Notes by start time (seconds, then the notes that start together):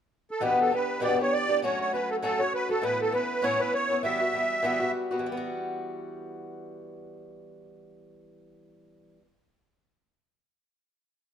0.31 A4
0.40 E2 B2 E3 B3 D4 G4 B4
0.61 A4
0.71 E3 B3 D4 G4 B4
1.00 E2 B2 E3 B3 D4 G4 D5
1.18 E3 B3 D4 G4 C#5
1.33 D5
1.48 E3 B3 D4 G4
1.62 F#3 A3 C#4 F#4 C#5
1.81 C#5
1.93 F#3 A3 C#4 F#4 B4
2.11 A4
2.22 F#3 A3 C#4 F#4 A4
2.39 A3 C#4 F#4 C#5
2.54 B4
2.69 A3 C#4 F#4 A4
2.82 A2 E3 B3 C#4 E4 B4
3.02 A4
3.12 E3 B3 C#4 E4 B4
3.42 A2 E3 B3 C#4 E4 C#5
3.59 B3 C#4 E4 B4
3.74 C#5
3.89 B3 C#4 E4
4.03 E3 G3 B3 F#4 E5
4.20 G3 B3 F#4
4.33 E3 G3 B3 F#4
4.63 E3 G3 B3 F#4
4.80 G3 B3 F#4
5.11 G3 B3 F#4
5.19 E3
5.26 G3
5.32 B3
5.37 F#4